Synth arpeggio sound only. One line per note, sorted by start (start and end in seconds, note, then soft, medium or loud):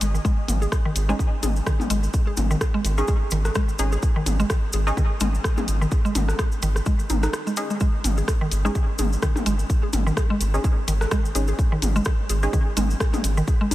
0.01 0.05 G#3 medium
0.14 0.17 D#3 medium
0.25 0.31 G#3 loud
0.62 0.67 G#4 medium
0.85 0.90 D#3 loud
1.09 1.14 G#3 loud
1.43 1.49 G#4 medium
1.67 1.73 D#3 loud
1.90 1.96 G#3 loud
2.27 2.32 G#4 medium
2.51 2.56 D#3 loud
2.74 2.79 G#3 loud
3.08 3.14 G#4 medium
3.32 3.38 D#3 loud
3.56 3.62 G#3 loud
3.92 3.97 G#4 medium
4.16 4.21 D#3 loud
4.40 4.44 G#3 loud
4.74 4.80 G#4 medium
4.97 5.03 D#3 loud
5.21 5.27 G#3 loud
5.58 5.63 G#4 medium
5.81 5.86 D#3 loud
6.05 6.10 G#3 loud
6.39 6.45 G#4 medium
6.63 6.69 D#3 loud
6.86 6.92 G#3 loud
7.10 7.16 D#4 medium
7.23 7.30 D#4 medium
7.47 7.52 G#3 medium
7.70 7.75 G#3 medium
7.81 7.87 G#3 loud
8.18 8.23 G#4 medium
8.41 8.46 D#3 loud
8.65 8.70 G#3 loud
8.99 9.05 G#4 medium
9.23 9.29 D#3 loud
9.46 9.52 G#3 loud
9.83 9.88 G#4 medium
10.07 10.11 D#3 loud
10.30 10.35 G#3 loud
10.64 10.70 G#4 medium
10.88 10.94 D#3 loud
11.12 11.18 G#3 loud
11.48 11.53 G#4 medium
11.72 11.77 D#3 loud
11.96 12.01 G#3 loud
12.30 12.36 G#4 medium
12.53 12.59 D#3 loud
12.77 12.83 G#3 loud
13.14 13.19 G#4 medium
13.37 13.42 D#3 loud
13.61 13.66 G#3 loud